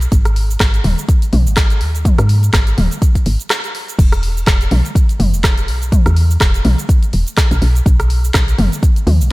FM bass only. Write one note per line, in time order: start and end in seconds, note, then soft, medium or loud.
0.12 0.57 G#1 loud
0.60 0.80 G#1 medium
0.84 0.95 D#1 loud
1.33 1.48 B1 loud
1.46 1.83 G#1 medium
1.81 2.14 D#2 medium
2.19 2.50 G#2 medium
2.53 2.73 G#1 medium
2.78 2.89 D#1 loud
3.26 3.37 G#1 medium
3.99 4.44 E1 loud
4.47 4.67 E1 medium
4.72 4.82 B1 loud
5.20 5.35 F#1 loud
5.33 5.70 E1 medium
5.68 6.01 B1 medium
6.06 6.37 E2 medium
6.41 6.61 E1 medium
6.65 6.76 B1 loud
7.14 7.24 E1 medium
7.51 7.60 B1 medium
7.62 7.82 B1 medium
7.86 8.31 B1 loud
8.34 8.54 B1 medium
8.59 8.69 F#1 loud
9.07 9.22 D#2 loud
9.20 9.32 B1 medium